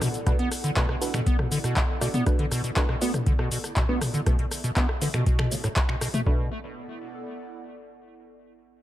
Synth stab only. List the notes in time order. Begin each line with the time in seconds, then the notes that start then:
0.27 A3 D4 F#4 B4
0.76 A3 D4 F#4 B4
1.01 A3 D4 F#4 B4
2.01 A3 D4 F#4 D5
2.26 A3 D4 F#4 B4
2.76 A3 D4 F#4 B4
3.02 A3 D4 F#4 B4
3.89 A3 D4 F#4 B4
4.26 A3 D4 F#4 B4
4.76 A3 D4 F#4 B4
5.01 A3 D4 F#4 B4
5.51 A3 D4 F#4 C#5
5.64 A3 D4 F#4 C#5
6.27 A3 D4 F#4 B4